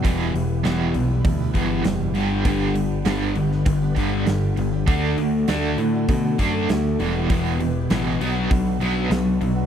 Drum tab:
HH |o-o-o-o-o-o-o-o-|o-o-o-o-o-o-o-o-|o-o-o-o-o-o-o-o-|o-o-o-o-o-o-o-o-|
SD |----o-------o---|----o--o----o---|----o-------o---|----o-------o---|
BD |o-------o-o-----|o-------o-o-----|o-------o-o-----|o-------o-------|